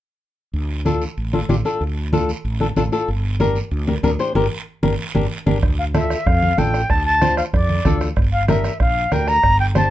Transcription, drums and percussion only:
0.54 long guiro medium
0.86 high conga medium
0.86 short guiro medium
1.02 short guiro medium
1.18 long guiro medium
1.33 high conga medium
1.49 high conga medium
1.49 short guiro medium
1.65 short guiro medium
1.82 long guiro medium
2.13 high conga medium
2.13 short guiro medium
2.29 short guiro medium
2.45 long guiro medium
2.61 high conga medium
2.76 high conga medium
2.76 short guiro medium
2.93 short guiro medium
3.08 long guiro medium
3.40 high conga medium
3.40 short guiro medium
3.56 short guiro medium
3.71 long guiro medium
3.88 high conga medium
4.04 high conga medium
4.04 short guiro medium
4.19 short guiro medium
4.35 high conga medium
4.35 long guiro medium
4.83 high conga medium
4.83 long guiro medium
5.15 high conga medium
5.15 long guiro medium
5.47 high conga medium
5.47 long guiro medium
5.63 bombo low medium
5.63 bombo rim medium
5.63 long guiro medium
5.95 bombo rim medium
5.95 high conga medium
5.95 short guiro medium
6.10 bombo rim medium
6.10 short guiro medium
6.26 bombo low medium
6.26 bombo rim medium
6.26 long guiro medium
6.42 high conga medium
6.58 bombo rim medium
6.58 high conga medium
6.58 short guiro medium
6.74 bombo rim medium
6.74 short guiro medium
6.90 bombo low medium
6.90 bombo rim medium
6.90 long guiro medium
7.22 bombo rim medium
7.22 high conga medium
7.22 short guiro medium
7.37 bombo rim medium
7.37 short guiro medium
7.54 bombo low medium
7.54 bombo rim medium
7.54 long guiro medium
7.69 high conga medium
7.85 bombo low medium
7.85 bombo rim medium
7.85 high conga medium
7.85 short guiro medium
8.01 bombo rim medium
8.01 short guiro medium
8.16 bombo low medium
8.16 bombo rim medium
8.16 long guiro medium
8.48 bombo rim medium
8.48 high conga medium
8.48 short guiro medium
8.64 bombo rim medium
8.64 short guiro medium
8.80 bombo low medium
8.80 bombo rim medium
8.80 long guiro medium
9.12 bombo rim medium
9.12 high conga medium
9.12 short guiro medium
9.27 bombo rim medium
9.27 short guiro medium
9.43 bombo low medium
9.43 bombo rim medium
9.43 long guiro medium
9.75 bombo rim medium
9.75 high conga medium
9.75 short guiro medium

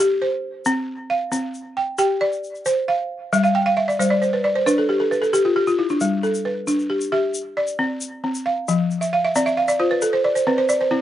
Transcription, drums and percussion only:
0.65 shaker medium
1.32 shaker medium
1.54 shaker soft
1.98 shaker medium
2.33 shaker soft
2.44 shaker soft
2.55 shaker soft
2.66 shaker medium
3.33 shaker medium
3.44 shaker soft
3.90 shaker soft
4.01 shaker medium
4.23 shaker soft
4.67 shaker medium
5.12 shaker soft
5.23 shaker soft
5.34 shaker medium
5.67 shaker soft
5.89 shaker soft
6.01 shaker medium
6.24 shaker soft
6.34 shaker soft
6.68 shaker medium
6.79 shaker soft
7.01 shaker soft
7.34 shaker medium
7.67 shaker soft
8.01 shaker medium
8.35 shaker soft
8.68 shaker medium
8.91 shaker soft
9.02 shaker soft
9.35 shaker medium
9.47 shaker soft
9.68 shaker medium
10.02 shaker medium
10.36 shaker soft
10.69 shaker medium

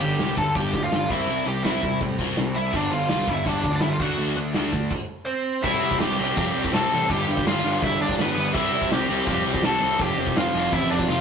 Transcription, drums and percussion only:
0.01 open hi-hat medium
0.19 snare loud
0.19 open hi-hat medium
0.37 kick medium
0.37 open hi-hat medium
0.55 kick loud
0.55 open hi-hat medium
0.73 kick medium
0.73 open hi-hat medium
0.92 snare loud
0.92 open hi-hat medium
1.10 kick loud
1.10 open hi-hat medium
1.28 open hi-hat medium
1.47 open hi-hat medium
1.65 snare loud
1.65 open hi-hat medium
1.83 kick medium
1.83 open hi-hat medium
2.00 kick loud
2.00 open hi-hat medium
2.18 kick medium
2.18 open hi-hat medium
2.37 snare loud
2.37 open hi-hat medium
2.55 open hi-hat medium
2.73 kick loud
2.73 crash medium
2.91 open hi-hat medium
3.09 snare loud
3.09 open hi-hat medium
3.27 kick medium
3.27 open hi-hat medium
3.45 kick loud
3.45 open hi-hat medium
3.64 kick medium
3.64 open hi-hat medium
3.80 snare loud
3.80 open hi-hat medium
3.99 kick loud
3.99 open hi-hat medium
4.18 open hi-hat medium
4.35 open hi-hat medium
4.54 snare loud
4.54 open hi-hat medium
4.72 kick medium
4.72 open hi-hat medium
4.90 kick loud
4.90 crash loud
5.63 kick loud
5.63 crash loud
5.63 crash medium
5.82 crash medium
5.91 kick loud
6.00 snare loud
6.00 crash medium
6.19 crash medium
6.37 kick loud
6.37 crash medium
6.56 crash medium
6.64 kick loud
6.74 snare loud
6.74 crash medium
6.92 crash medium
7.10 kick loud
7.10 crash medium
7.29 crash medium
7.37 kick medium
7.47 snare loud
7.47 crash medium
7.65 crash medium
7.82 kick loud
7.82 crash medium
8.02 crash medium
8.09 kick loud
8.19 snare loud
8.19 crash medium
8.37 crash medium
8.54 kick loud
8.54 crash medium
8.72 crash medium
8.82 kick medium
8.91 snare loud
8.91 crash medium
9.10 crash medium
9.27 kick loud
9.27 crash medium
9.46 crash medium
9.54 kick loud
9.63 snare loud
9.63 crash medium
9.81 crash medium
9.99 kick loud
9.99 crash medium
10.18 crash medium
10.27 kick medium
10.36 snare loud
10.36 crash medium
10.55 crash medium
10.73 kick loud
10.73 crash medium
10.91 crash medium
10.99 kick medium
11.08 snare medium

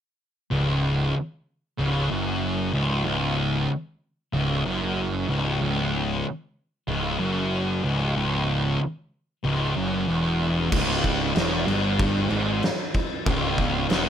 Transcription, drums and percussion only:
10.72 kick loud
10.72 crash loud
10.72 crash medium
11.04 kick medium
11.04 crash medium
11.36 snare loud
11.36 crash medium
11.68 crash medium
11.99 kick loud
11.99 crash medium
12.30 crash medium
12.63 snare loud
12.63 crash medium
12.94 kick loud
12.94 crash medium
13.26 kick loud
13.26 crash medium
13.58 kick medium
13.58 crash medium
13.90 snare loud
13.90 crash medium

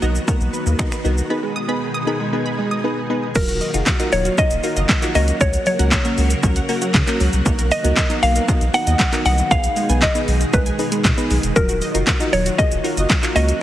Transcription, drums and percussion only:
0.02 shaker soft
0.15 shaker medium
0.28 kick loud
0.28 shaker medium
0.41 shaker soft
0.54 shaker medium
0.67 shaker medium
0.79 finger snap loud
0.79 kick loud
0.79 shaker medium
0.92 finger snap medium
0.92 shaker medium
1.05 shaker medium
1.18 shaker medium
3.35 kick loud
3.35 crash loud
3.35 shaker medium
3.48 closed hi-hat medium
3.48 shaker medium
3.61 open hi-hat medium
3.61 shaker medium
3.74 closed hi-hat medium
3.74 shaker medium
3.86 kick loud
3.86 snare loud
3.86 clap loud
3.86 shaker medium
4.00 closed hi-hat medium
4.00 shaker medium
4.12 open hi-hat medium
4.12 shaker medium
4.25 closed hi-hat medium
4.25 shaker medium
4.38 kick loud
4.38 shaker medium
4.51 closed hi-hat soft
4.51 shaker medium
4.64 open hi-hat medium
4.64 shaker medium
4.77 closed hi-hat medium
4.77 shaker medium
4.89 kick loud
4.89 snare medium
4.89 clap loud
4.89 shaker medium
5.02 clap medium
5.02 closed hi-hat medium
5.02 shaker medium
5.15 open hi-hat medium
5.15 shaker medium
5.28 closed hi-hat medium
5.28 shaker medium
5.41 kick loud
5.41 shaker medium
5.53 closed hi-hat medium
5.53 shaker medium
5.66 open hi-hat medium
5.66 shaker medium
5.79 closed hi-hat medium
5.79 shaker medium
5.91 kick loud
5.91 snare medium
5.91 clap loud
5.91 shaker medium
6.05 closed hi-hat medium
6.05 shaker medium
6.18 open hi-hat medium
6.18 shaker medium
6.30 closed hi-hat medium
6.30 shaker medium
6.43 kick loud
6.43 shaker medium
6.56 closed hi-hat soft
6.56 shaker soft
6.69 open hi-hat medium
6.69 shaker medium
6.82 closed hi-hat medium
6.82 shaker medium
6.94 kick loud
6.94 snare medium
6.94 clap loud
6.94 shaker medium
7.07 clap medium
7.07 closed hi-hat medium
7.07 shaker medium
7.20 open hi-hat medium
7.20 shaker medium
7.33 closed hi-hat medium
7.33 shaker medium
7.46 kick loud
7.46 shaker medium
7.59 closed hi-hat medium
7.59 shaker medium
7.71 open hi-hat medium
7.71 shaker medium
7.85 closed hi-hat medium
7.85 shaker medium
7.96 kick loud
7.96 snare medium
7.96 clap loud
7.96 shaker medium
8.10 closed hi-hat medium
8.10 shaker medium
8.23 open hi-hat medium
8.23 shaker medium
8.36 closed hi-hat medium
8.36 shaker medium
8.48 kick loud
8.48 shaker medium
8.61 closed hi-hat medium
8.61 shaker soft
8.74 open hi-hat medium
8.74 shaker medium
8.87 closed hi-hat medium
8.87 shaker medium
8.99 kick loud
8.99 snare medium
8.99 clap loud
8.99 shaker medium
9.13 clap medium
9.13 closed hi-hat medium
9.13 shaker medium
9.26 open hi-hat medium
9.26 shaker medium
9.38 closed hi-hat medium
9.38 shaker medium
9.51 kick loud
9.51 shaker medium
9.64 closed hi-hat medium
9.64 shaker medium
9.76 open hi-hat medium
9.76 shaker medium
9.90 closed hi-hat medium
9.90 shaker medium
10.02 kick loud
10.02 snare medium
10.02 clap loud
10.02 shaker medium
10.15 closed hi-hat medium
10.15 shaker medium
10.28 open hi-hat medium
10.28 shaker medium
10.41 closed hi-hat medium
10.41 shaker medium
10.53 kick loud
10.53 shaker medium
10.66 closed hi-hat soft
10.66 shaker soft
10.79 open hi-hat medium
10.79 shaker medium
10.92 closed hi-hat medium
10.92 shaker medium
11.04 kick loud
11.04 snare medium
11.04 clap loud
11.04 shaker medium
11.18 closed hi-hat medium
11.18 shaker medium
11.31 open hi-hat medium
11.31 shaker medium
11.43 closed hi-hat medium
11.43 shaker medium
11.56 kick loud
11.56 shaker medium
11.69 closed hi-hat medium
11.69 shaker medium
11.82 open hi-hat medium
11.82 shaker medium
11.95 closed hi-hat medium
11.95 shaker medium
12.07 kick loud
12.07 snare medium
12.07 clap loud
12.07 shaker medium
12.20 closed hi-hat medium
12.20 shaker medium
12.33 open hi-hat medium
12.33 shaker medium
12.46 closed hi-hat medium
12.46 shaker medium
12.59 kick loud
12.59 shaker medium
12.72 closed hi-hat soft
12.72 shaker medium
12.85 open hi-hat medium
12.85 shaker medium
12.97 closed hi-hat medium
12.97 shaker medium
13.10 kick loud
13.10 snare loud
13.10 clap loud
13.10 shaker medium
13.23 clap medium
13.23 closed hi-hat medium
13.23 shaker medium
13.36 open hi-hat medium
13.36 shaker medium
13.49 closed hi-hat medium
13.49 shaker medium

